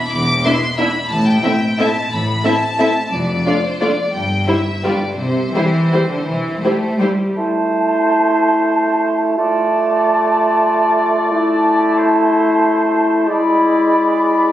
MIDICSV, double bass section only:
0, 0, Header, 1, 2, 480
1, 0, Start_track
1, 0, Key_signature, 0, "major"
1, 0, Tempo, 335196
1, 170, Time_signature, 3, 2, 24, 8
1, 6419, Tempo, 361664
1, 9779, Tempo, 344432
1, 10272, Key_signature, 0, "minor"
1, 11219, Tempo, 330579
1, 15539, Tempo, 321543
1, 20761, End_track
2, 0, Start_track
2, 0, Title_t, "Double bass section"
2, 0, Program_c, 0, 48
2, 171, Note_on_c, 0, 28, 49
2, 565, Note_off_c, 0, 28, 0
2, 1589, Note_on_c, 0, 33, 47
2, 1989, Note_off_c, 0, 33, 0
2, 3021, Note_on_c, 0, 33, 47
2, 3414, Note_off_c, 0, 33, 0
2, 4466, Note_on_c, 0, 29, 42
2, 4873, Note_off_c, 0, 29, 0
2, 5950, Note_on_c, 0, 31, 37
2, 6339, Note_off_c, 0, 31, 0
2, 6897, Note_on_c, 0, 31, 34
2, 7289, Note_off_c, 0, 31, 0
2, 7375, Note_on_c, 0, 36, 36
2, 7762, Note_off_c, 0, 36, 0
2, 8813, Note_on_c, 0, 36, 31
2, 9200, Note_off_c, 0, 36, 0
2, 20761, End_track
0, 0, End_of_file